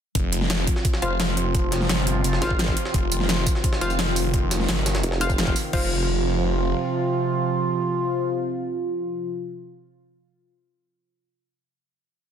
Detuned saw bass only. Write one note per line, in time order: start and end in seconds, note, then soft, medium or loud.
0.15 0.66 F1 loud
1.02 1.88 F1 loud
1.89 2.23 G1 loud
2.24 2.40 F1 loud
2.94 3.45 F1 loud
3.81 4.67 F1 loud
4.69 5.02 G1 loud
5.73 6.74 F1 loud